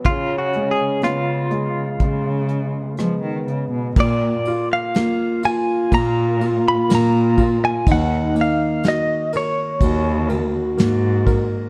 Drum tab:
CC |--------|x-------|--------|
RD |--------|-xxxxxxx|xxxxxxxx|
HH |xxxxxxxx|--------|--------|
SD |--r---r-|--o---o-|--o---o-|
BD |o---o---|o---o--o|o---o--o|